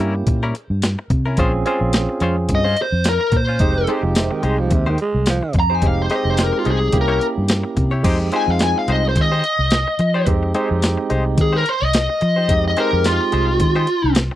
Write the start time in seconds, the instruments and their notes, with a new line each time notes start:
Already playing: tine electric piano A#3 C#4 E4 G4
0.00 fingered electric bass G2, clean electric guitar G3 C#4 E4 A#4, closed hi-hat
0.15 muted clean electric guitar stroke
0.27 fingered electric bass A#2, muted clean electric guitar stroke, kick, closed hi-hat
0.43 clean electric guitar G3 C#4 E4 A#4
0.55 muted clean electric guitar stroke, closed hi-hat
0.70 fingered electric bass G2
0.82 snare, closed hi-hat, tambourine
0.99 muted clean electric guitar stroke
1.10 fingered electric bass C3, muted clean electric guitar stroke, kick, closed hi-hat
1.26 clean electric guitar C#4 E4 A#4
1.37 fingered electric bass A#1, clean electric guitar G#3 C#4 F4 C5, tine electric piano C4 C#4 F4 G#4, kick, closed hi-hat
1.53 muted clean electric guitar stroke
1.66 clean electric guitar G#3 C#4 F4 C5, tine electric piano C4 C#4 F4 G#4, closed hi-hat
1.81 fingered electric bass A#1
1.93 snare, closed hi-hat, tambourine
2.09 muted clean electric guitar stroke
2.20 fingered electric bass F2, clean electric guitar G#3 C#4 F4 C5, closed hi-hat
2.37 muted clean electric guitar stroke
2.49 fingered electric bass G2, muted clean electric guitar stroke, kick, closed hi-hat
2.55 lead electric guitar D#5
2.64 clean electric guitar G#3 C#4 F4 C5
2.77 muted clean electric guitar stroke, closed hi-hat
2.82 lead electric guitar C5
2.92 fingered electric bass F2
3.04 snare, closed hi-hat, tambourine
3.09 lead electric guitar A#4
3.20 muted clean electric guitar stroke
3.32 fingered electric bass A#2, muted clean electric guitar stroke, kick, closed hi-hat
3.37 lead electric guitar C5
3.47 clean electric guitar C#4 F4 C5
3.59 fingered electric bass F1, clean electric guitar G#3 D#4 G4 C5, tine electric piano G#3 C4 D#4 G4, kick, closed hi-hat
3.75 muted clean electric guitar stroke
3.87 clean electric guitar G#3 D#4 G4 C5, tine electric piano G#3 C4 D#4 G4, tenor saxophone G#3, closed hi-hat
4.03 fingered electric bass F1, tenor saxophone F3, muted clean electric guitar stroke
4.15 tenor saxophone C3, snare, closed hi-hat, tambourine
4.31 tenor saxophone D#3, muted clean electric guitar stroke
4.43 fingered electric bass C2, clean electric guitar G#3 D#4 G4 C5, tenor saxophone G#3, closed hi-hat
4.58 tenor saxophone F3, muted clean electric guitar stroke
4.71 fingered electric bass D#2, tenor saxophone C3, muted clean electric guitar stroke, kick, closed hi-hat
4.86 tenor saxophone D#3, clean electric guitar G#3 D#4 G4 C5
4.98 tenor saxophone G#3, muted clean electric guitar stroke, closed hi-hat
5.14 fingered electric bass C2
5.26 tenor saxophone F3, snare, closed hi-hat, tambourine
5.42 muted clean electric guitar stroke
5.53 fingered electric bass F2, muted clean electric guitar stroke, kick, closed hi-hat
5.60 lead electric guitar A#5
5.70 clean electric guitar D#4 G4 C5
5.75 lead electric guitar G#5
5.82 fingered electric bass F1, tine electric piano G#3 C4 D#4 G4, kick, closed hi-hat
5.87 lead electric guitar F5
5.98 muted clean electric guitar stroke
6.02 lead electric guitar C5
6.10 tine electric piano G#3 C4 D#4 G4, clean electric guitar G#3 D#4 G4 C5, snare, closed hi-hat
6.15 lead electric guitar D#5
6.25 fingered electric bass F1, muted clean electric guitar stroke
6.30 lead electric guitar C5
6.37 snare, closed hi-hat, tambourine
6.43 lead electric guitar A#4
6.53 muted clean electric guitar stroke
6.59 lead electric guitar F4
6.65 fingered electric bass C2, clean electric guitar G#3 D#4 G4 C5, closed hi-hat
6.71 lead electric guitar G#4
6.81 muted clean electric guitar stroke
6.92 fingered electric bass C2, tine electric piano A#3 C#4 E4 G4, muted clean electric guitar stroke, kick, closed hi-hat
7.01 lead electric guitar A#4
7.08 clean electric guitar A#3 E4 G4 C#5
7.21 closed hi-hat
7.38 fingered electric bass G2
7.48 snare, closed hi-hat, tambourine
7.63 muted clean electric guitar stroke
7.77 fingered electric bass C3, muted clean electric guitar stroke, kick, closed hi-hat
7.91 clean electric guitar E4 G4 C#5
8.03 fingered electric bass F2, tine electric piano G#3 C4 D#4 G4, clean electric guitar G#3 D#4 G4 C5, kick, closed hi-hat, crash
8.20 muted clean electric guitar stroke
8.32 tine electric piano G#3 C4 D#4 F4, clean electric guitar G#3 D#4 G4 C5, closed hi-hat
8.36 lead electric guitar G#5
8.48 fingered electric bass F2, lead electric guitar F5, muted clean electric guitar stroke
8.59 lead electric guitar G#5, snare, closed hi-hat, tambourine
8.76 lead electric guitar F5, muted clean electric guitar stroke
8.88 fingered electric bass C2, clean electric guitar G#3 D#4 G4 C5, closed hi-hat
8.92 lead electric guitar D#5
9.09 lead electric guitar C5
9.16 fingered electric bass D#3, muted clean electric guitar stroke, kick, closed hi-hat
9.21 lead electric guitar D#5
9.32 clean electric guitar G#3 D#4 G4 C5
9.44 muted clean electric guitar stroke, closed hi-hat
9.59 fingered electric bass C2
9.70 snare, closed hi-hat, tambourine
9.87 muted clean electric guitar stroke
9.99 fingered electric bass F3, muted clean electric guitar stroke, closed hi-hat
10.14 clean electric guitar D#4 G4 C5
10.26 fingered electric bass F2, tine electric piano G#3 C4 D#4 G4, kick, closed hi-hat
10.43 muted clean electric guitar stroke
10.54 clean electric guitar G#3 D#4 G4 C5, tine electric piano G#3 C4 D#4 G4, closed hi-hat
10.70 fingered electric bass F2, muted clean electric guitar stroke
10.82 snare, closed hi-hat, tambourine
10.97 muted clean electric guitar stroke
11.10 fingered electric bass C2, clean electric guitar G#3 D#4 G4 C5, closed hi-hat
11.25 muted clean electric guitar stroke
11.38 fingered electric bass D#3, lead electric guitar G#4, muted clean electric guitar stroke, kick, closed hi-hat
11.53 clean electric guitar G#3 D#4 G4 C5, lead electric guitar A#4
11.65 lead electric guitar C5, muted clean electric guitar stroke, closed hi-hat
11.82 fingered electric bass C2, lead electric guitar D#5
11.93 snare, closed hi-hat, tambourine
12.09 muted clean electric guitar stroke
12.21 fingered electric bass F3, muted clean electric guitar stroke, closed hi-hat
12.36 clean electric guitar D#4 G4 C5
12.48 fingered electric bass F2, tine electric piano G#3 C4 D#4 G4, kick, closed hi-hat
12.64 lead electric guitar D#5, muted clean electric guitar stroke
12.77 clean electric guitar G#3 D#4 G4 C5, tine electric piano G#3 C4 D#4 G4, lead electric guitar A#4, closed hi-hat
12.92 fingered electric bass F2, muted clean electric guitar stroke
13.04 lead electric guitar F4, snare, closed hi-hat, tambourine
13.20 muted clean electric guitar stroke
13.32 fingered electric bass C2, clean electric guitar G#3 D#4 G4 C5, closed hi-hat
13.48 muted clean electric guitar stroke
13.60 fingered electric bass D#3, muted clean electric guitar stroke, kick, closed hi-hat
13.76 clean electric guitar G#3 D#4 G4 C5
13.87 muted clean electric guitar stroke, closed hi-hat
14.04 fingered electric bass C2
14.15 snare, closed hi-hat, tambourine
14.31 muted clean electric guitar stroke